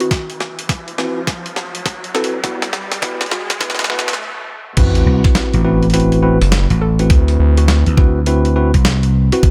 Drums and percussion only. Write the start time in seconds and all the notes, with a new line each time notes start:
0.00 closed hi-hat
0.11 kick, snare, closed hi-hat
0.30 closed hi-hat
0.40 snare
0.59 closed hi-hat
0.69 kick, snare, closed hi-hat
0.88 closed hi-hat
0.98 snare
1.27 kick, snare, closed hi-hat
1.46 closed hi-hat
1.56 snare
1.75 closed hi-hat
1.86 kick, snare, closed hi-hat
2.04 closed hi-hat
2.15 snare
2.24 closed hi-hat
2.44 kick, snare, closed hi-hat
2.62 snare, closed hi-hat
2.73 snare
2.92 snare, closed hi-hat
3.02 kick, snare, closed hi-hat
3.21 snare
3.26 closed hi-hat
3.32 snare
3.50 snare, closed hi-hat
3.61 kick, snare, closed hi-hat
3.70 snare
3.75 snare
3.79 snare, closed hi-hat
3.82 snare
3.84 snare
3.87 snare
3.90 snare
3.94 snare
3.99 snare
4.08 snare, closed hi-hat
4.13 snare
4.77 kick, closed hi-hat, crash
4.95 closed hi-hat
5.24 kick, closed hi-hat
5.35 snare, closed hi-hat
5.54 closed hi-hat
5.83 closed hi-hat
5.90 closed hi-hat
5.94 closed hi-hat
6.12 closed hi-hat
6.42 cross-stick, closed hi-hat
6.52 snare, closed hi-hat
6.70 closed hi-hat
6.99 closed hi-hat
7.10 kick, cross-stick, closed hi-hat
7.28 closed hi-hat
7.57 closed hi-hat
7.68 snare, closed hi-hat
7.86 closed hi-hat
7.97 kick, cross-stick
8.26 closed hi-hat
8.45 closed hi-hat
8.74 kick, closed hi-hat
8.85 snare, closed hi-hat
9.03 closed hi-hat
9.32 closed hi-hat
9.43 kick, closed hi-hat